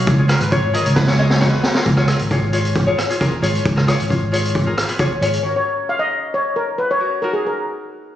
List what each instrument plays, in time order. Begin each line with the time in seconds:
Already playing: steel pan C#5 F5
0.07 fingered electric bass C#2, kick, closed hi-hat
0.18 ukulele F4 G#4 C#5
0.28 ukulele F4 G#4 B4, trumpet A#4, cross-stick, closed hi-hat
0.40 fingered electric bass G#1, trumpet B4, closed hi-hat
0.51 ukulele F4 G#4 C#5, trumpet C#5, kick, closed hi-hat
0.73 ukulele F4 G#4 A#4, trumpet D#5, closed hi-hat
0.85 fingered electric bass C#2, trumpet C#5, closed hi-hat
0.95 trumpet B4, kick, snare
1.07 ukulele F4 G#4 C#5, snare
1.18 ukulele F4 G#4 D#5, trumpet C#5
1.30 trumpet C#5, snare
1.40 ukulele F4 G#4 C#5, trumpet B4, kick, snare
1.63 snare
1.75 ukulele F4 G#4 A#4, snare
1.86 fingered electric bass C#2, kick, closed hi-hat
1.97 ukulele F4 G#4 C#5, cross-stick
2.07 ukulele F4 G#4 A#4, cross-stick, closed hi-hat
2.19 fingered electric bass G#1, closed hi-hat
2.31 ukulele F4 G#4 C#5, kick, closed hi-hat
2.53 ukulele F4 G#4 C#5, closed hi-hat
2.65 closed hi-hat
2.75 kick, closed hi-hat
2.87 ukulele F4 G#4 C#5
2.98 cross-stick, closed hi-hat
3.09 ukulele F4 G#4 C#5, closed hi-hat
3.20 ukulele F4 G#4 A#4, kick, closed hi-hat
3.42 fingered electric bass G#1, ukulele F4 G#4 C#5, closed hi-hat
3.55 closed hi-hat
3.65 fingered electric bass C#2, kick, closed hi-hat
3.76 ukulele F4 G#4 A#4, cross-stick
3.87 ukulele F4 G#4 C#5, cross-stick, closed hi-hat
4.00 fingered electric bass G#1, closed hi-hat
4.10 ukulele F4 G#4 C#5, kick, closed hi-hat
4.32 ukulele F4 G#4 C#5, closed hi-hat
4.45 closed hi-hat
4.55 kick, closed hi-hat
4.66 ukulele F4 G#4 A#4
4.78 cross-stick, closed hi-hat
4.88 ukulele F4 G#4 B4, closed hi-hat
4.99 ukulele F4 G#4 C#5, kick, closed hi-hat
5.21 fingered electric bass G#1, ukulele F4 G#4 C#5, closed hi-hat
5.33 closed hi-hat
5.43 ukulele C#4 F#4 A#4, steel pan C#5
5.56 steel pan C#5
5.89 steel pan F5
5.99 steel pan D#5
6.34 steel pan C#5
6.56 steel pan A#4
6.78 steel pan B4
6.91 steel pan C#5
6.99 ukulele C#4 F#4 A#4
7.22 ukulele D#4 F#4 A#4, steel pan A#4
7.33 steel pan G#4
7.46 steel pan A#4